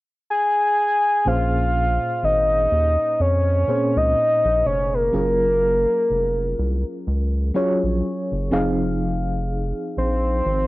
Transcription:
0.31 soft synth lead G#5
1.25 analog synth bass A#1, fm electric piano A#2 A#3 C#4 G#4 C5, soft synth lead F5
2.23 analog synth bass G#1, soft synth lead D#5
2.72 analog synth bass D#2
3.20 analog synth bass F2, soft synth lead C#5
3.67 fm electric piano A#2 A#3 C4 G#4 C5
3.75 fm electric piano C#4
3.96 analog synth bass C#2, soft synth lead D#5
4.45 analog synth bass A#1
4.65 analog synth bass F1, soft synth lead C#5
4.94 soft synth lead A#4
5.12 analog synth bass F#1, fm electric piano F#3 C#4 F4 G#4 A#4
6.10 analog synth bass F1
6.59 analog synth bass C2
7.07 analog synth bass C#2
7.55 fm electric piano F#3 C#4 F4 G#4 C#5
7.84 analog synth bass A#1
8.32 analog synth bass F#1
8.51 analog synth bass F1, fm electric piano F3 C4 D#4 G#4 F5
9.97 analog synth bass A#1, soft synth lead C5
10.46 analog synth bass G#1

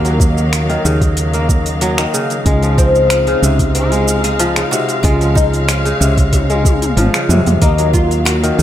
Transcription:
Already playing: fretless electric bass D#2, kora C#3 A#3, string section D#3 F#3 A#3 F5, oud F#4, synth texture D#5
0.05 kora F#3, open hi-hat, cabasa
0.20 kick, cabasa
0.38 cabasa
0.53 finger snap, open hi-hat, cabasa
0.69 kora D#3, open hi-hat
0.85 fretless electric bass D#2, kora C#3, cabasa
1.01 kick, open hi-hat, cabasa
1.17 open hi-hat, cabasa
1.33 kora A#3, open hi-hat, cabasa
1.49 kick, cabasa
1.66 open hi-hat, cabasa
1.81 kora F#3, open hi-hat, cabasa
1.98 kora D#3, finger snap, open hi-hat, cabasa
2.14 kora C#3, cabasa
2.30 open hi-hat, cabasa
2.46 fretless electric bass C#2, string section G#3 D#4 F5, kora G#3, kick, open hi-hat, cabasa
2.63 kora F3, open hi-hat, cabasa
2.78 oud C4, kick, cabasa
2.95 cabasa
3.10 finger snap, open hi-hat, cabasa
3.27 kora C#3, open hi-hat
3.42 fretless electric bass C#2, kora C3, cabasa
3.59 kick, open hi-hat, cabasa
3.75 oud F4, open hi-hat, cabasa
3.92 kora G#3, open hi-hat, cabasa
4.08 cabasa
4.24 oud G#4, open hi-hat, cabasa
4.39 kora F3, open hi-hat, cabasa
4.56 kora C#3, finger snap, open hi-hat, cabasa
4.71 kora C3, oud F#4, cabasa
4.89 open hi-hat, cabasa
5.03 fretless electric bass C#2, kora G#3, oud F4, string section C#5, kick, open hi-hat, cabasa
5.21 kora F3, open hi-hat, cabasa
5.35 oud D#4, kick, cabasa
5.53 open hi-hat, cabasa
5.68 oud C#4, finger snap, open hi-hat, cabasa
5.85 kora C#3, open hi-hat, cabasa
6.00 fretless electric bass C#2, kora C3, cabasa
6.17 kick, open hi-hat, cabasa
6.33 kick, open hi-hat, high tom, cabasa
6.50 kora G#3, open hi-hat, high tom, cabasa
6.65 kick, high tom, cabasa
6.82 open hi-hat, mid tom, cabasa
6.97 fretless electric bass G#1, kora F3, open hi-hat, mid tom, cabasa
7.14 kora C#3, finger snap, open hi-hat, cabasa
7.29 fretless electric bass F2, kora C3, mid tom, cabasa
7.46 fretless electric bass F2, mid tom, open hi-hat, cabasa
7.62 fretless electric bass D#2, string section D#3 F#3 A#3 F5, kora A#3, oud D#4, kick, open hi-hat, cabasa
7.78 kora F#3, open hi-hat, cabasa
7.93 oud F4, kick, cabasa
8.11 open hi-hat, cabasa
8.25 oud F#4, finger snap, open hi-hat, cabasa
8.43 kora D#3, open hi-hat, cabasa
8.59 fretless electric bass D#2, kora C#3, cabasa

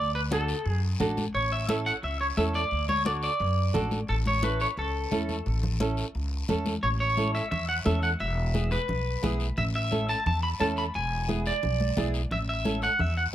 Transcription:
Already playing: upright bass D2, clean electric guitar D5
0.15 clean electric guitar B4
0.31 nylon-string guitar D4 F#4 A4, clean electric guitar A4, high conga, short guiro
0.48 short guiro
0.66 upright bass F#2, clean electric guitar G#4, high conga, long guiro
1.00 upright bass A1, nylon-string guitar D4 F#4 A4, high conga, low conga, short guiro
1.17 high conga, short guiro
1.34 upright bass A1, clean electric guitar C#5, high conga, long guiro
1.52 clean electric guitar E5
1.68 nylon-string guitar C#4 E4 A4, clean electric guitar E5, high conga, short guiro
1.86 clean electric guitar F#5, short guiro
2.03 upright bass C#2, clean electric guitar E5, high conga, long guiro
2.21 clean electric guitar C#5
2.37 upright bass E2, nylon-string guitar C#4 E4 A4, clean electric guitar E5, high conga, short guiro
2.54 clean electric guitar D5, short guiro
2.71 upright bass D2, high conga, long guiro
2.89 clean electric guitar C#5, high conga
3.05 nylon-string guitar D4 F#4 A4, clean electric guitar D5, high conga, short guiro
3.23 clean electric guitar D5, short guiro
3.40 upright bass F#2, high conga, long guiro
3.73 upright bass A1, nylon-string guitar D4 F#4 A4, high conga, low conga, short guiro
3.91 high conga, short guiro
4.08 upright bass A1, clean electric guitar A4, high conga, long guiro
4.26 clean electric guitar C#5, high conga
4.42 nylon-string guitar C#4 E4 A4, clean electric guitar B4, high conga, short guiro
4.60 clean electric guitar C#5, short guiro
4.77 upright bass C#2, clean electric guitar A4, high conga, long guiro
5.11 upright bass E2, nylon-string guitar C#4 E4 A4, high conga, short guiro
5.29 high conga, short guiro
5.46 upright bass A1, high conga, long guiro
5.63 low conga
5.80 nylon-string guitar C#4 E4 A4, high conga, short guiro
5.97 short guiro
6.15 upright bass C#2, high conga, long guiro
6.48 upright bass E2, nylon-string guitar C#4 E4 A4, high conga, low conga, short guiro
6.66 high conga, short guiro
6.83 upright bass A1, clean electric guitar C#5, long guiro
7.00 clean electric guitar C#5
7.17 nylon-string guitar C#4 E4 A4, high conga, short guiro
7.35 clean electric guitar E5, short guiro
7.51 upright bass E2, clean electric guitar E5, low conga, long guiro
7.69 clean electric guitar F#5
7.85 upright bass E2, nylon-string guitar C#4 E4 A4, clean electric guitar E5, high conga, low conga, short guiro
8.03 clean electric guitar F#5, short guiro
8.20 upright bass E1, clean electric guitar E5, long guiro
8.54 nylon-string guitar B3 E4 G#4, high conga, short guiro
8.71 clean electric guitar B4, short guiro
8.88 upright bass B1, low conga, long guiro
9.22 upright bass B1, nylon-string guitar B3 E4 G#4, high conga, low conga, short guiro
9.40 short guiro
9.57 upright bass A1, clean electric guitar E5, low conga, long guiro
9.75 clean electric guitar E5
9.91 nylon-string guitar C#4 E4 A4, high conga, short guiro
10.09 clean electric guitar A5, short guiro
10.26 upright bass E2, clean electric guitar A5, low conga, long guiro
10.43 clean electric guitar B5
10.60 upright bass E2, nylon-string guitar C#4 E4 A4, clean electric guitar A5, high conga, short guiro
10.77 clean electric guitar B5, short guiro
10.94 upright bass E1, clean electric guitar G#5, long guiro
11.28 nylon-string guitar B3 E4 G#4, high conga, short guiro
11.46 clean electric guitar D5, short guiro
11.63 upright bass B1, low conga, long guiro
11.80 high conga
11.97 upright bass B1, nylon-string guitar B3 E4 G#4, high conga, low conga, short guiro
12.14 short guiro
12.31 upright bass A1, clean electric guitar E5, low conga, long guiro
12.49 clean electric guitar E5
12.65 nylon-string guitar C#4 E4 A4, high conga, short guiro
12.82 clean electric guitar F#5, short guiro
12.99 upright bass E2, clean electric guitar E5, low conga, long guiro
13.17 clean electric guitar F#5

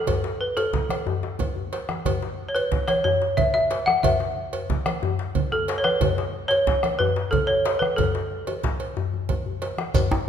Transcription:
Already playing: balafon A4
0.07 bombo low, cowbell, djembe tone, low conga, djembe bass
0.23 djembe slap, high conga
0.41 balafon B4
0.57 balafon A4, cowbell, djembe slap, djembe tone
0.73 bombo low, djembe slap, low conga
0.89 bombo rim, cowbell, djembe slap, high conga
1.07 djembe tone, djembe bass
1.23 bombo rim, djembe slap, high conga
1.39 bombo rim, bombo low, cowbell, high conga, low conga, djembe bass
1.56 djembe bass
1.72 bombo rim, cowbell, djembe slap, high conga
1.89 bombo rim, djembe slap, high conga
2.05 bombo rim, bombo low, cowbell, djembe tone, low conga, djembe bass
2.22 djembe slap
2.39 high conga
2.49 balafon C#5
2.55 balafon B4, cowbell, djembe tone
2.72 bombo low, djembe slap, high conga, low conga
2.88 balafon C#5, bombo rim, cowbell, djembe slap, high conga
3.04 balafon C#5, djembe tone, djembe bass
3.22 djembe slap
3.37 balafon E5, bombo low, cowbell, low conga
3.54 balafon E5, bombo rim, djembe tone
3.71 cowbell, djembe slap
3.86 balafon F#5, bombo rim, high conga
4.03 balafon E5, bombo rim, bombo low, cowbell, djembe tone, low conga, djembe bass
4.20 djembe slap
4.37 high conga
4.53 cowbell, djembe tone
4.70 bombo low, djembe slap, high conga, low conga
4.86 bombo rim, cowbell, djembe slap, high conga
5.03 djembe tone, djembe bass
5.19 djembe slap
5.35 bombo low, cowbell, low conga
5.52 balafon A4, bombo rim, djembe tone
5.68 cowbell, djembe slap
5.78 balafon C#5
5.84 balafon B4, bombo rim, high conga
6.01 bombo rim, bombo low, cowbell, djembe tone, low conga, djembe bass
6.18 djembe slap
6.34 high conga
6.48 balafon C#5, cowbell, djembe tone
6.67 bombo low, djembe slap, high conga, low conga
6.83 bombo rim, cowbell, djembe slap, high conga
6.99 balafon B4, djembe tone, djembe bass
7.16 djembe slap
7.31 balafon A4, bombo low, cowbell, low conga
7.47 balafon C#5, bombo rim, djembe tone
7.65 cowbell, djembe slap
7.79 balafon B4, bombo rim, high conga
7.96 balafon A4, bombo low, cowbell, djembe tone, low conga, djembe bass
8.15 djembe slap, high conga
8.31 djembe slap, high conga
8.47 cowbell, djembe slap, high conga, djembe tone
8.64 bombo low, djembe slap, low conga
8.80 cowbell
8.96 djembe slap, high conga, djembe tone, djembe bass
9.13 high conga, djembe bass
9.29 bombo low, cowbell, low conga, djembe bass
9.46 djembe bass
9.62 cowbell, djembe slap, high conga
9.78 bombo rim, djembe slap, high conga
9.94 bombo rim, bombo low, cowbell, djembe tone, low conga, djembe bass, shekere
10.11 djembe slap, djembe tone

